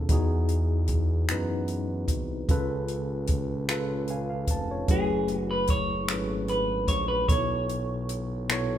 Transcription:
0.00 0.11 B2 medium
0.00 0.10 B3 medium
0.00 0.11 C#4 medium
0.00 0.10 E4 medium
0.00 0.11 G#4 medium
0.00 0.11 A4 medium
0.09 1.25 E2 loud
0.09 0.92 E3 medium
0.09 0.92 B3 medium
0.09 0.92 D#4 medium
0.09 0.93 F#4 medium
0.09 0.93 G#4 medium
0.09 kick loud
0.09 closed hi-hat medium
0.49 closed hi-hat soft
0.87 kick medium
0.87 closed hi-hat medium
1.28 2.06 F#2 medium
1.28 2.11 E3 medium
1.28 2.12 B3 medium
1.28 2.12 D#4 medium
1.28 2.12 F#4 medium
1.28 2.13 B4 medium
1.28 finger snap loud
1.28 closed hi-hat medium
1.68 closed hi-hat soft
2.08 2.45 C2 medium
2.08 kick medium
2.08 closed hi-hat medium
2.48 4.45 C#2 loud
2.48 3.31 C#3 medium
2.48 3.32 C#4 medium
2.48 3.32 F4 medium
2.48 3.33 A4 medium
2.48 3.33 B4 medium
2.48 kick loud
2.48 closed hi-hat medium
2.88 closed hi-hat soft
3.27 kick medium
3.27 closed hi-hat medium
3.68 4.51 C#3 medium
3.68 4.52 C#4 medium
3.68 4.52 F4 medium
3.68 4.53 A4 medium
3.68 4.53 B4 medium
3.68 finger snap loud
3.68 closed hi-hat medium
4.07 4.28 F5 medium
4.07 4.29 G#5 medium
4.07 closed hi-hat soft
4.30 4.67 F5 soft
4.47 4.85 F1 medium
4.47 4.87 A5 medium
4.47 kick medium
4.47 closed hi-hat medium
4.71 5.08 C#5 medium
4.88 6.12 F#1 loud
4.88 5.71 F#3 medium
4.88 5.73 A3 medium
4.88 5.72 C#4 medium
4.88 5.72 E4 medium
4.88 5.72 G#4 medium
4.88 5.38 G#4 medium
4.88 5.73 B4 medium
4.88 kick loud
4.88 closed hi-hat medium
5.28 closed hi-hat soft
5.38 5.51 F#4 medium
5.51 5.70 B4 medium
5.67 6.49 C#5 medium
5.67 kick medium
5.67 closed hi-hat medium
6.08 6.86 G#1 medium
6.08 6.91 F#3 medium
6.08 6.92 C#4 medium
6.08 6.92 E4 medium
6.08 6.93 G#4 medium
6.08 6.93 A4 soft
6.08 6.93 B4 medium
6.08 finger snap loud
6.08 closed hi-hat medium
6.48 6.88 B4 medium
6.48 closed hi-hat soft
6.88 7.25 A#1 medium
6.88 7.07 C#5 medium
6.88 kick medium
6.88 closed hi-hat medium
7.08 7.28 B4 medium
7.28 8.78 B1 loud
7.28 8.12 B2 medium
7.28 8.12 B3 medium
7.28 7.36 D#4 soft
7.28 8.13 A4 medium
7.28 8.78 C#5 medium
7.28 8.13 C#5 medium
7.28 kick loud
7.28 closed hi-hat medium
7.37 8.16 E4 medium
7.69 closed hi-hat soft
8.09 closed hi-hat medium
8.49 8.78 B2 medium
8.49 8.78 B3 medium
8.49 8.78 E4 medium
8.49 8.78 A4 medium
8.49 8.78 C#5 medium
8.49 finger snap loud
8.49 closed hi-hat medium

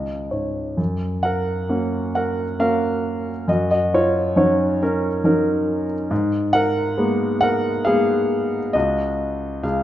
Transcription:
0.00 0.75 C#2 soft
0.00 0.28 D#5 soft
0.31 0.77 G#2 soft
0.31 0.75 C#5 soft
0.77 3.44 F#2 medium
1.23 2.11 A#4 medium
1.23 2.10 F#5 medium
1.69 2.41 A#3 soft
1.69 2.42 C#4 soft
1.69 2.42 F#4 soft
2.15 2.57 A#4 medium
2.15 2.61 F#5 medium
2.59 3.30 A#3 soft
2.59 3.31 C#4 soft
2.59 3.31 F#4 soft
2.59 3.45 A#4 medium
2.59 3.44 F5 medium
3.48 6.06 F#2 medium
3.48 3.69 F#4 medium
3.48 3.69 D#5 medium
3.71 3.91 F#4 medium
3.71 3.93 D#5 medium
3.94 4.35 F4 soft
3.94 4.35 C#5 medium
4.36 5.07 F#3 soft
4.36 4.81 C#4 soft
4.36 5.07 D#4 soft
4.36 4.78 F#4 soft
4.36 4.83 C#5 medium
4.83 5.22 C#4 medium
4.83 5.24 A#4 medium
5.24 5.93 F#3 soft
5.24 5.93 C#4 soft
5.24 5.94 D#4 soft
5.24 5.85 A#4 medium
6.11 8.71 G#2 medium
6.53 7.38 A#4 medium
6.53 7.39 F#5 loud
6.97 7.68 G#3 medium
6.97 7.69 A#3 soft
6.97 7.69 B3 soft
7.41 7.84 A#4 medium
7.41 7.83 F#5 loud
7.85 8.57 G#3 soft
7.85 8.57 A#3 soft
7.85 8.57 B3 soft
7.85 8.71 G#4 medium
7.85 8.76 F5 medium
8.73 9.61 C#2 medium
8.73 9.60 F#4 soft
8.73 9.66 D#5 medium
9.63 9.83 C#2 medium
9.63 9.83 G#4 soft
9.63 9.83 F5 medium

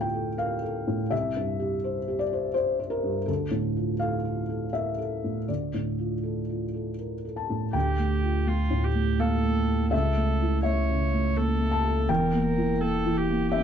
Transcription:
0.00 1.07 D2 soft
0.00 0.87 A2 soft
0.00 1.14 F4 soft
0.00 0.14 A4 soft
0.00 0.38 F5 medium
0.00 0.35 G5 medium
0.14 0.53 A4 soft
0.37 0.62 A#4 soft
0.37 1.07 F5 medium
0.62 1.01 A4 soft
0.87 1.12 A2 soft
1.11 3.24 C2 medium
1.11 2.15 E5 medium
1.36 1.75 G2 soft
1.60 1.98 G4 soft
1.84 2.22 C5 medium
2.08 2.46 G4 soft
2.19 2.53 D5 medium
2.33 2.52 C5 soft
2.54 2.78 C5 medium
2.54 2.80 D5 soft
2.79 3.18 C5 soft
2.90 3.24 A#4 medium
3.03 3.27 G2 soft
3.26 5.44 D2 medium
3.26 3.97 A4 medium
3.51 3.91 A2 soft
3.77 4.16 F4 soft
4.00 4.40 A4 soft
4.00 4.69 F5 medium
4.25 4.64 F4 soft
4.49 4.88 A4 soft
4.73 4.99 A#4 soft
4.73 5.44 E5 medium
4.98 5.38 A4 soft
5.24 5.49 A2 soft
5.48 7.71 D2 soft
5.48 6.95 D5 soft
5.74 6.14 A2 soft
5.99 6.39 F4 soft
6.23 6.64 A4 soft
6.49 6.89 F4 soft
6.74 7.14 A4 soft
6.99 7.25 A#4 soft
7.25 7.65 A4 soft
7.36 7.72 A5 soft
7.50 7.75 A2 soft
7.73 9.88 D2 medium
7.73 9.93 D2 medium
7.73 8.49 G4 soft
7.73 9.15 G5 medium
7.99 8.38 A3 soft
8.23 8.62 F4 soft
8.47 8.86 A3 soft
8.47 8.86 F4 medium
8.70 9.10 A2 soft
8.84 9.22 G4 medium
8.95 9.34 A3 soft
9.19 9.44 A#3 soft
9.19 9.91 A4 medium
9.19 9.88 F5 medium
9.44 9.82 A3 soft
9.67 9.92 A4 soft
9.91 12.10 C#2 medium
9.91 12.05 C#2 medium
9.91 10.63 A4 medium
9.91 10.60 E5 medium
10.17 10.55 A3 soft
10.42 10.80 E4 soft
10.63 11.04 A3 soft
10.63 11.39 C#5 soft
10.63 11.32 E5 medium
10.90 11.28 C#3 soft
11.14 11.52 A3 soft
11.37 11.61 A#3 soft
11.37 12.10 A4 medium
11.61 11.99 A3 soft
11.72 12.06 A5 medium
11.85 12.09 A4 soft
12.09 13.63 E1 medium
12.09 13.63 E2 medium
12.09 12.44 A#4 medium
12.09 13.49 G5 medium
12.33 12.71 A#3 soft
12.45 12.83 A#4 medium
12.58 12.96 E4 soft
12.81 13.20 A#3 soft
12.81 13.18 A4 medium
13.06 13.43 E3 soft
13.17 13.52 G4 medium
13.30 13.63 A#3 soft
13.52 13.63 C#4 soft
13.52 13.63 G4 medium
13.52 13.63 E5 medium

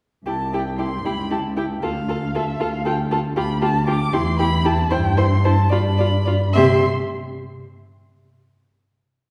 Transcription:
0.26 0.96 C2 soft
0.26 0.35 E4 soft
0.26 0.34 G4 soft
0.26 0.55 A5 medium
0.53 0.61 E4 soft
0.53 0.62 G4 soft
0.53 0.78 G5 soft
0.79 0.87 E4 soft
0.79 0.87 G4 soft
0.79 1.07 C6 medium
1.05 1.74 C#2 soft
1.05 1.13 E4 soft
1.05 1.14 G4 soft
1.05 1.31 B5 medium
1.31 1.39 E4 soft
1.31 1.39 G4 soft
1.31 1.40 A5 medium
1.56 1.65 E4 soft
1.56 1.65 G4 soft
1.56 1.64 G5 soft
1.83 2.52 D2 soft
1.83 1.92 F4 soft
1.83 1.91 A4 soft
1.83 2.37 F5 medium
2.08 2.16 F4 soft
2.08 2.17 A4 soft
2.35 2.43 F4 soft
2.35 2.43 A4 soft
2.35 2.62 E5 medium
2.60 3.29 D2 soft
2.60 2.68 F4 soft
2.60 2.69 A4 soft
2.60 2.85 F5 medium
2.85 2.94 F4 soft
2.85 2.93 A4 soft
2.85 2.94 G5 medium
3.11 3.19 F4 soft
3.11 3.19 A4 soft
3.11 3.19 A5 medium
3.36 4.06 D2 medium
3.36 3.44 F4 soft
3.36 3.44 G4 soft
3.36 3.62 B5 medium
3.62 3.70 F4 soft
3.62 3.70 G4 medium
3.62 3.87 A5 medium
3.87 3.95 F4 soft
3.87 3.95 G4 soft
3.87 4.15 D6 medium
4.13 4.83 E2 medium
4.13 4.21 E4 medium
4.13 4.21 G4 soft
4.13 4.39 C6 medium
4.39 4.47 E4 soft
4.39 4.47 G4 soft
4.39 4.67 B5 medium
4.65 4.73 E4 medium
4.65 4.73 G4 soft
4.65 4.93 A5 medium
4.91 5.62 G2 medium
4.91 4.99 E4 medium
4.91 4.99 C5 medium
4.91 5.19 G5 medium
5.17 5.25 E4 soft
5.17 5.25 C5 medium
5.17 5.47 C6 medium
5.44 5.53 E4 soft
5.44 5.52 C5 medium
5.44 5.73 A5 medium
5.69 6.45 G2 medium
5.69 5.79 F4 soft
5.69 5.77 D5 soft
5.69 6.54 B5 medium
5.98 6.08 F4 soft
5.98 6.06 D5 soft
6.25 6.35 F4 soft
6.25 6.33 D5 soft
6.53 6.85 C3 medium
6.53 6.85 G4 medium
6.53 6.84 E5 medium
6.53 6.84 C6 medium

